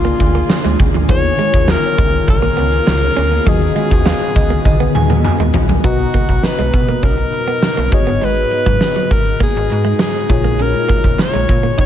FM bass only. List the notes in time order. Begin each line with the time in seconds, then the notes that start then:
Already playing: C#2
0.20 D2
0.65 D2
0.80 C#2
0.95 D2
1.09 D#2
1.54 D#2
1.98 C#2
2.28 B1
2.58 C#2
2.88 C#2
3.18 D2
3.47 D#2
3.91 D#2
4.36 C#2
4.66 B1
4.95 D#2
5.40 D#2
5.55 A#1
5.84 B1
6.29 B1
6.59 B1
6.74 B2
7.03 B1
7.78 B1
7.92 G#1
8.08 G1
8.23 G#1
8.66 G#2
9.11 G#1
9.56 G#1
9.72 G#2
10.30 A#1
11.04 A#1
11.34 A#1
11.49 A#2
11.78 C#2